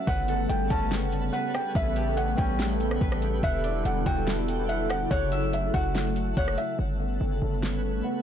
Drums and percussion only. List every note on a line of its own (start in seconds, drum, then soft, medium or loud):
0.07 kick loud
0.07 closed hi-hat medium
0.28 closed hi-hat medium
0.50 closed hi-hat medium
0.70 kick medium
0.70 closed hi-hat medium
0.92 snare loud
0.92 closed hi-hat medium
1.12 closed hi-hat medium
1.33 closed hi-hat medium
1.54 cross-stick loud
1.54 closed hi-hat medium
1.75 kick loud
1.75 closed hi-hat medium
1.96 closed hi-hat medium
2.17 closed hi-hat medium
2.38 kick medium
2.38 open hi-hat medium
2.59 snare loud
2.59 closed hi-hat medium
2.80 closed hi-hat medium
2.91 cross-stick medium
3.01 kick loud
3.01 closed hi-hat medium
3.12 cross-stick loud
3.22 closed hi-hat medium
3.43 kick loud
3.43 closed hi-hat medium
3.64 closed hi-hat medium
3.85 closed hi-hat medium
4.06 kick medium
4.06 closed hi-hat medium
4.27 snare loud
4.27 closed hi-hat medium
4.48 closed hi-hat medium
4.69 closed hi-hat medium
4.90 cross-stick loud
4.90 closed hi-hat medium
5.11 kick loud
5.11 closed hi-hat medium
5.32 closed hi-hat medium
5.53 closed hi-hat medium
5.74 kick medium
5.74 closed hi-hat medium
5.95 snare loud
5.95 closed hi-hat medium
6.16 closed hi-hat medium
6.37 kick loud
6.37 closed hi-hat medium
6.48 cross-stick medium
6.58 closed hi-hat medium
7.63 snare loud